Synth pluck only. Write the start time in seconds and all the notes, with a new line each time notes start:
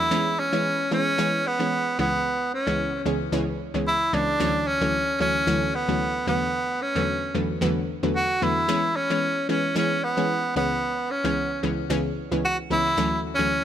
0.11 E3 G#3 B3 C#4
0.53 E3 G#3 B3 C#4
0.91 E3 G#3 B3 C#4
1.18 E3 G#3 B3 C#4
1.59 E3 G#3 B3 C#4
1.98 C#2 E3 G#3 B3 C#4
2.67 C#2 E3 G#3 B3 C#4
3.05 C#2 E3 G#3 B3 C#4
3.32 C#2 E3 G#3 B3 C#4
3.74 C#2 E3 G#3 B3 C#4
4.13 C#2 E3 G#3 B3 C#4
4.40 D2 E3 F#3 A3 C#4
4.81 D2 E3 F#3 A3 C#4
5.20 D2 E3 F#3 A3 C#4
5.47 D2 E3 F#3 A3 C#4
5.88 D2 E3 F#3 A3 C#4
6.27 E2 D3 F#3 A3 B3
6.95 E2 D3 F#3 A3 B3
7.34 E2 D3 F#3 A3 B3
7.61 E2 D3 F#3 A3 B3
8.03 E2 D3 F#3 A3 B3
8.42 E2 D3 F#3 A3 B3
8.68 E3 G#3 B3 C#4
9.10 E3 G#3 B3 C#4
9.49 E3 G#3 B3 C#4
9.75 E3 G#3 B3 C#4
10.17 E3 G#3 B3 C#4
10.56 C#2 E3 G#3 B3 C#4
11.24 C#2 E3 G#3 B3 C#4
11.63 C#2 E3 G#3 B3 C#4
11.90 C#2 E3 G#3 B3 C#4
12.31 C#2 E3 G#3 B3 C#4
12.70 C#2 E3 G#3 B3 C#4
12.97 D2 E3 F#3 A3 C#4
13.39 D2 E3 F#3 A3 C#4